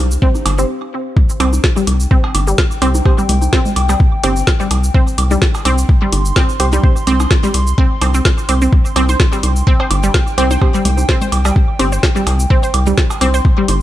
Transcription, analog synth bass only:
0.00 C2
0.46 G1
1.40 C2
1.87 C2
2.35 G1
2.82 C2
3.29 C2
3.76 C2
4.24 G1
4.71 C2
5.18 C2
5.65 C2
6.13 G1
6.60 C2
7.07 C2
7.54 C2
8.02 C2
8.49 C2
8.96 C2
9.43 C2
9.91 G1
10.38 C2
10.85 C2
11.32 C2
11.80 G1
12.27 C2
12.74 C2
13.21 C2
13.68 G1

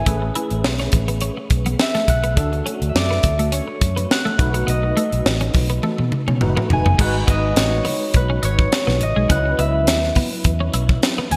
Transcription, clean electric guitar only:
0.06 A3
0.22 muted clean electric guitar stroke
0.36 E4
0.80 C#4
0.93 muted clean electric guitar stroke
1.08 B3
1.22 C#4
1.37 muted clean electric guitar stroke
1.66 B3
1.95 A3
2.08 muted clean electric guitar stroke
2.24 B3
2.37 D4
2.53 muted clean electric guitar stroke
2.66 C#4
3.11 B3
3.24 muted clean electric guitar stroke
3.39 A3
3.52 C#4
3.68 muted clean electric guitar stroke
3.97 B3
4.25 A3
4.39 muted clean electric guitar stroke
4.54 B3
4.67 B3
4.83 muted clean electric guitar stroke
4.97 A3
5.41 C#4
5.54 muted clean electric guitar stroke
5.70 B3
5.83 A3
5.99 muted clean electric guitar stroke
6.28 C#4
6.57 B3
6.70 muted clean electric guitar stroke
6.86 B3
6.99 G#3
7.14 muted clean electric guitar stroke
7.27 B3
7.85 B3
8.14 muted clean electric guitar stroke
8.30 C#4
8.43 D#4
8.87 B3
9.01 muted clean electric guitar stroke
9.16 G#3
9.30 C#4
9.46 muted clean electric guitar stroke
9.59 B3
10.16 B3
10.45 muted clean electric guitar stroke
10.60 C#4
10.74 E4
11.18 B3
11.31 muted clean electric guitar stroke

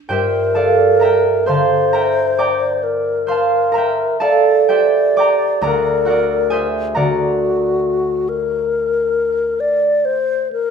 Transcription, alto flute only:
0.10 A#4
1.47 C5
2.83 A#4
4.23 D5
5.65 A#4
6.96 F#4
8.29 A#4
9.60 D5
10.05 C5
10.53 A#4

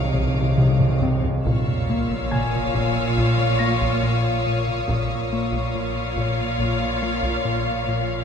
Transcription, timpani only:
0.04 C3
0.11 C3
0.19 C3
0.27 C3
0.34 C3
0.42 C3
0.50 C3
0.58 C3
0.65 C3
0.72 C3
0.80 C3
0.88 C3
0.96 C3
1.04 C3
1.12 C3
1.19 C3
1.27 C3
1.34 C3

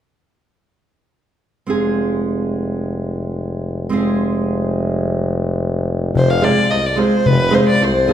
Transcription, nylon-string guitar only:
1.67 G#3 C4 F4 G#4
3.89 G#3 C4 F4 G#4
6.41 G#3 C4 F4 G#4
6.96 G#3 C4 F4 G#4
7.50 G#3 C4 F4 G#4
8.07 G#3 C4 F4 G#4

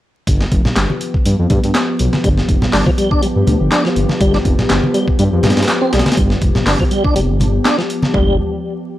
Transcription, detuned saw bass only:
0.27 G1
0.52 F1
0.76 G1
1.26 G2
1.39 F2
1.50 G2
1.64 G2
2.00 B1
2.24 G1
2.49 F1
2.62 G1
2.73 G1
3.36 G2
3.47 D2
3.60 G1
3.96 G1
4.21 G1
4.45 F1
4.70 G1
5.19 G2
5.32 F2
5.44 G2
5.57 G2
5.93 B1
6.17 G1
6.42 F1
6.55 G1
6.66 G1
7.16 F1
7.29 G1
8.14 G1

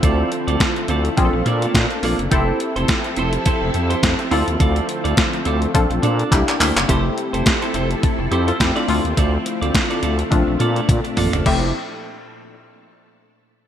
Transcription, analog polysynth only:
Already playing: C4 E4 F4 A4
1.17 C4 D4 F4 G#4
1.25 A4
2.31 C4 E4 G4 A4
4.31 C4 E4 F4 A4
5.74 C4 D4 F4 A4
6.31 A#3 D4 E4 G4
6.88 A3 C4 E4 G4
8.32 E4 G4
8.47 F4 A4
8.60 E4 G4
8.76 D4 F4
8.88 A3 C4 E4 F4
10.31 A3 C4 D4 F4
11.46 A3 C4 E4 G4

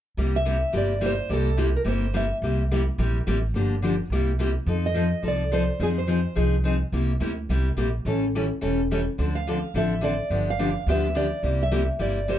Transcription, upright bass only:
0.17 C2
0.74 G1
1.30 C2
1.85 G1
2.42 C2
2.98 A#1
3.27 A1
3.54 G1
4.10 C2
4.67 F2
5.23 C2
5.80 F2
6.37 C2
6.92 C2
7.20 D2
7.49 C2
7.77 A#1
8.05 A1
8.63 E1
9.19 D2
9.74 A1
10.30 G1
10.87 D2
11.43 C2
11.99 G1

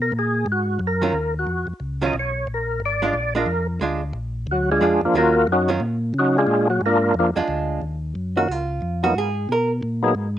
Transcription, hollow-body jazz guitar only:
1.02 D#3 F#3 C#4 F4
2.02 D#3 F#3 C#4 F4
3.02 G#3 D4 F4
3.35 G#3 D4 F4
3.81 G#3 D4 F4
4.81 G#3 D4 F4
5.15 D#3 F#3 C#4 F4
5.68 D#3 F#3 C#4 F4
7.36 G#3 D4 F4
8.37 F#4
8.51 F4
9.04 F#4
9.18 G#4
9.52 A#4

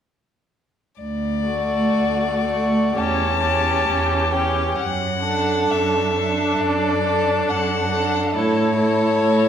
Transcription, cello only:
1.01 D2
1.97 D2
2.98 E2
3.89 E2
4.80 F#2
5.72 F#2
6.60 F#2
7.48 F#2
8.35 A2
9.23 A2

